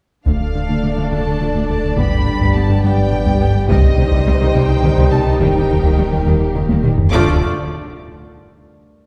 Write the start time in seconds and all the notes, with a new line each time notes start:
0.26 D1 D2 D3 A3 D4 A4 D5 F5, taiko
0.40 D2
0.54 D2 F3
0.69 D2 A3
0.83 D2 A3
0.97 D2 F3
1.12 D2 A3 A5
1.26 D2
1.40 D2 F3
1.55 D2 A3
1.69 D2 A3 A5
1.84 D2
1.97 G1 G2 G3 B3 G4 B4 B5, taiko
2.12 G2
2.26 G1 G2 G3
2.40 G2 B3, taiko
2.54 G1 G2 B3 A5
2.69 G2 G3
2.82 G1 G2 B3 G5
2.98 G2
3.12 G1 G2 G3
3.26 G2 B3, taiko
3.41 G1 G2 B3
3.55 G2
3.68 C2 C3 D#3 G3 C4 D#4 G4 C5 D#5, taiko
3.83 C2
3.97 C2 C3 D#3, taiko mid
4.12 C2 C3 G3, taiko
4.26 C2 C3 G3
4.41 C2 C3 D#3
4.54 C2 C3 G3 G5
4.69 C2
4.83 C2 C3 D#3, taiko mid
4.97 C2 C3 G3, taiko
5.11 C2 C3 G3 A5
5.26 C2
5.40 D#1 D#2 D#3 G3 A#3 G4 A#4 G5, taiko
5.55 D#2
5.69 D#2 D#3, taiko mid
5.83 D#2 D#3 G3, taiko
5.98 D#2 D#3 G3
6.12 D#2 D#3
6.26 D#2 D#3 G3
6.41 D#2
6.55 D#2 D#3, taiko mid
6.69 D#2 D#3 G3, taiko high
6.83 D#2 D#3 G3, taiko low-mid
6.97 D#2, taiko low
7.11 D1 D2 D3 F3 A3 D4 F4 A4 D5 D6, taiko